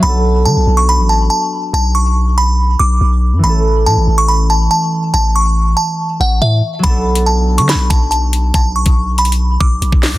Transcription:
<<
  \new Staff \with { instrumentName = "Synth bell" } { \time 4/4 \key b \minor \tempo 4 = 141 b''4 a''8. cis'''16 b''8 a''8 a''4 | a''8 cis'''4 b''4 d'''4. | b''4 a''8. cis'''16 b''8 a''8 a''4 | a''8 cis'''4 a''4 fis''8 e''4 |
b''4 a''8. cis'''16 b''8 a''8 a''4 | a''8 cis'''4 b''4 d'''4. | }
  \new Staff \with { instrumentName = "Harp" } { \time 4/4 \key b \minor <fis b d' a'>1~ | <fis b d' a'>1 | <e a cis' a'>1~ | <e a cis' a'>1 |
<fis b d' a'>1~ | <fis b d' a'>1 | }
  \new Staff \with { instrumentName = "808-style bass" } { \clef bass \time 4/4 \key b \minor b,,4 d16 b,,16 b,,8. a,,8. r4 | b,,2~ b,,8 b,,8 b,,8. fis,16 | a,,4 a,16 a,,16 a,,4. r4 | a,,4. r4 a,,8 a,8 r8 |
b,,4.~ b,,16 d16. b,,16. b,,4. | b,,8. b,,4.~ b,,16 b,,8 b,,16 b,,8 b,16 | }
  \new DrumStaff \with { instrumentName = "Drums" } \drummode { \time 4/4 r4 r4 r4 r4 | r4 r4 r4 r4 | r4 r4 r4 r4 | r4 r4 r4 r4 |
<hh bd>8. hh16 r8. hh16 <hc hh sn>8 <hh bd>8 hh8 hh8 | <hh bd>8. <hh bd>16 \tuplet 3/2 { r16 r16 r16 hh16 hh16 hh16 } r8 bd8 hh16 bd16 <hc hho sn>8 | }
>>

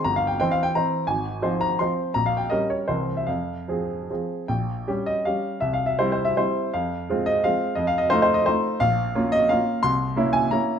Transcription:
\new Staff \with { instrumentName = "Grand piano" } { \time 3/4 \key f \minor \tempo 4 = 169 << { \tuplet 3/2 { bes''8 f''8 g''8 g''8 f''8 g''8 } bes''4 | aes''4. bes''8 c'''4 | \tuplet 3/2 { bes''8 f''8 g''8 } ees''8 des''8 c''8. e''16 | f''2 r4 |
g''4. ees''8 f''4 | \tuplet 3/2 { e''8 f''8 e''8 c''8 c''8 e''8 } c''4 | f''4. ees''8 f''4 | \tuplet 3/2 { ees''8 f''8 ees''8 c''8 c''8 ees''8 } c''4 |
f''4. ees''8 f''4 | c'''4. aes''8 bes''4 | } \\ { g,,4 <e c' c''>4 <e c' c''>4 | aes,,4 <f c' c''>4 <f c' c''>4 | bes,,4 <g des' bes'>4 <c, e c' bes'>4 | f,4 <f c' aes'>4 <f c' aes'>4 |
bes,,4 <g des' g'>4 <g des' g'>4 | c,4 <g c' e'>4 <g c' e'>4 | f,4 <aes c' f'>4 <aes c' f'>4 | f,4 <a ees' f'>4 <a ees' f'>4 |
bes,,4 <bes des' f'>4 <bes des' f'>4 | c,4 <bes des' e'>4 <bes des' e'>4 | } >> }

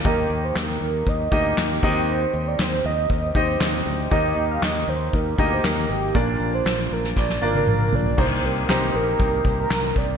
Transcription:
<<
  \new Staff \with { instrumentName = "Soft synth lead" } { \time 4/4 \key ees \major \tempo 4 = 118 bes'8. c''16 bes'8 bes'8 ees''8 ees''4 r8 | c''8. d''16 c''8 ees''8 ees''8 c''4 r8 | ees''8. f''16 ees''8 c''8 bes'8. c''16 bes'8 g'8 | bes'8. c''8. bes'8 d''8 bes'16 bes'8. d''8 |
c''8 bes'8 c''8 bes'4 bes'16 bes'8. d''8 | }
  \new Staff \with { instrumentName = "Grand piano" } { \time 4/4 \key ees \major <bes ees' g' ees''>4. r4 <bes ees' g' ees''>4 <c' ees' g' ees''>8~ | <c' ees' g' ees''>4 r4. <c' ees' g' ees''>4 r8 | <bes ees' g' ees''>4. r4 <bes ees' g' ees''>4 r8 | <bes d' f' d''>4. r4 <bes d' f' d''>4 r8 |
<bes ees' g' c''>4 <bes ees' g' c''>4. r4. | }
  \new Staff \with { instrumentName = "Grand piano" } { \clef bass \time 4/4 \key ees \major ees4. r2 ees8~ | ees4 r2. | ees4. r2 r8 | bes,4. r2 r8 |
c4. r2 r8 | }
  \new Staff \with { instrumentName = "Fingered electric bass" } { \clef bass \time 4/4 \key ees \major ees,8 ees,8 ees,8 ees,8 ees,8 d,8 ees,8 ees,8~ | ees,8 ees,8 ees,8 ees,8 ees,8 ees,8 ees,8 d,8 | ees,8 ees,8 ees,8 ees,8 ees,8 d,8 ees,8 aes,,8 | bes,,8 bes,,8 bes,,8 bes,,8 bes,,8 aes,,8 bes,,8 bes,,8 |
c,8 c,8 c,8 bes,,8 c,8 c,8 c,8 c,8 | }
  \new DrumStaff \with { instrumentName = "Drums" } \drummode { \time 4/4 bd4 <hc sn>4 bd8 bd8 <hc sn>8 bd8 | r4 <hc sn>4 bd8 bd8 <hc sn>4 | bd4 <hc sn>4 bd8 bd8 <hc sn>4 | bd4 <hc sn>8. sn16 <bd sn>16 sn8 tommh16 toml8 tomfh16 tomfh16 |
<cymc bd>4 <hc sn>4 bd8 bd8 <hc sn>8 bd8 | }
>>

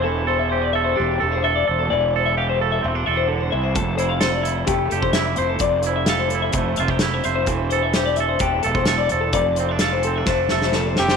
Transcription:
<<
  \new Staff \with { instrumentName = "Clean electric guitar" } { \time 4/4 \key f \major \tempo 4 = 129 a'8 c''16 e''16 c''16 d''16 e''16 c''16 g'8 a'16 c''16 e''16 d''16 c''16 a'16 | d''8 c''16 e''16 f''16 c''16 a'16 e''16 c''8 e''16 c''16 a'16 c''16 e''16 c''16 | a'8 c''16 f''16 c''16 d''16 e''16 c''16 g'8 a'16 c''16 e''16 d''16 c''16 a'16 | d''8 c''16 e''16 f''16 c''16 a'16 e''16 c''8 e''16 c''16 a'16 c''16 e''16 c''16 |
a'8 c''16 e''16 c''16 d''16 e''16 c''16 g'8 a'16 c''16 e''16 d''16 c''16 a'16 | d''8 c''16 e''16 f''16 c''16 a'16 e''16 c''8 e''16 c''16 a'16 c''16 e''16 c''16 | }
  \new Staff \with { instrumentName = "Trumpet" } { \time 4/4 \key f \major r1 | r1 | r1 | r1 |
r1 | r2. r8 g'8 | }
  \new Staff \with { instrumentName = "Clean electric guitar" } { \time 4/4 \key f \major << { r8 a'8 g'8 a'8 d'8 a'8 a'8 a'8 | r8 a'8 g'8 a'8 c'16 d'16 a'4. | r8 e'8 a'8 e'8 a8 g'8 e'8 c''8 | r8 e'8 a'8 e'8 a8 f'16 g'16 e'8 c''8 |
r8 a'8 g'8 a'8 d'8 a'8 a'8 a'8 | r8 c'16 d'16 a'8 c'16 d'16 a8 a'4. | } \\ { e1 | e2. d8 e8 | f,1 | f,1 |
e1 | f,2. bes,8 c8 | } >> }
  \new Staff \with { instrumentName = "Fingered electric bass" } { \clef bass \time 4/4 \key f \major e,,2 e,,8 e,,4 e,,8 | e,,2 e,,8 e,,4 c,8 | f,,2 f,,8 f,,4 f,,8 | f,,2 f,,8 f,,4 f,,8 |
e,,2 e,,8 e,,4 e,,8 | f,,2 f,,8 f,,4 f,,8 | }
  \new DrumStaff \with { instrumentName = "Drums" } \drummode { \time 4/4 r4 r4 r4 r4 | r4 r4 r4 r4 | <hh bd>8 hh8 <hh sn>8 hh8 <hh bd>8 hh16 bd16 <hh sn>8 hh8 | <hh bd>8 hh8 <hh sn>8 hh8 <hh bd>8 hh16 bd16 <hh sn>8 hh8 |
<hh bd>8 hh8 <hh sn>8 hh8 <hh bd>8 hh16 bd16 <hh sn>8 hh8 | <hh bd>8 hh8 <hh sn>8 hh8 <bd sn>8 sn16 sn16 sn8 sn16 sn16 | }
>>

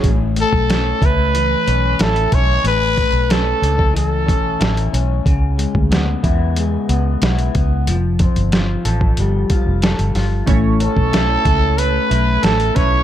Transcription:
<<
  \new Staff \with { instrumentName = "Trumpet" } { \time 4/4 \key a \major \tempo 4 = 92 r8 a'4 b'4. a'8 cis''8 | b'4 a'4 a'4. r8 | r1 | r1 |
r8 a'4. b'4 a'8 cis''8 | }
  \new Staff \with { instrumentName = "Synth keys" } { \time 4/4 \key a \major r1 | r1 | r1 | r1 |
<a cis' e' cis''>4. r2 <a cis' e' b'>8 | }
  \new Staff \with { instrumentName = "Clean electric guitar" } { \time 4/4 \key a \major a,8 a8 cis'8 e'8 e8 cis'8 e'8 cis'8 | a,8 a8 cis'8 d'16 e'16 e8 cis'8 e'8 cis'8 | cis8 gis8 b8 e'8 gis8 b8 e'8 b8 | f8 c'8 f'8 a'8 g8 f'8 a'8 f'8 |
a,8 cis'8 e'8 a'8 a8 e'8 a'8 e'8 | }
  \new Staff \with { instrumentName = "Fingered electric bass" } { \clef bass \time 4/4 \key a \major a,,8. b,,8. cis,4 b,,8 a,,8 b,,8 | a,,8. b,,8. cis,4 b,,8 a,,8 b,,8 | cis,8. d,8. e,4 cis,8 b,,8 cis,8 | f,,8. g,,8. a,,8 g,,8 r16 f,,8 g,,16 g,,8 |
a,,8. b,,8. cis,4 b,,8 a,,8 b,,8 | }
  \new DrumStaff \with { instrumentName = "Drums" } \drummode { \time 4/4 <hh bd>8 hh16 bd16 <hh sn>8 <hh bd>8 hh8 hh8 <hh sn>16 hh16 <hh bd>8 | hh8 <hh bd>8 <hh sn>8 hh16 bd16 hh8 <hh bd>8 <hh sn>16 hh16 hh8 | <hh bd>8 hh16 bd16 <hh sn>8 <hh bd>8 hh8 hh8 <hh sn>16 hh16 <hh bd>8 | hh8 <hh bd>16 hh16 <hh sn>8 hh16 bd16 hh8 <hh bd>8 <hh sn>16 hh16 <hho sn>8 |
<hh bd>8 hh16 bd16 <hh sn>8 <hh bd>8 hh8 hh8 <hh sn>16 hh16 <hh bd>8 | }
>>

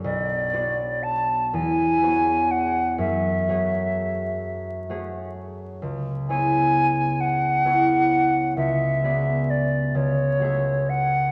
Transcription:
<<
  \new Staff \with { instrumentName = "Flute" } { \time 6/8 \key b \dorian \tempo 4. = 43 d''4 a''8 gis''4 fis''8 | e''2~ e''8 r8 | r8 gis''4 fis''4. | e''4 d''8 cis''4 fis''8 | }
  \new Staff \with { instrumentName = "Harp" } { \time 6/8 \key b \dorian <b,, d' fis' b'>8 <b d' fis' cis''>4 e,8 <b fis' gis' cis''>4 | fis,8 <a fis' gis' cis''>4. <a fis' gis' cis''>4 | cis,8 <b e' gis' cis''>4. <b e' gis' cis''>4 | cis,8 <b fis' gis' d''>4 cis,8 <a fis' gis' e''>4 | }
>>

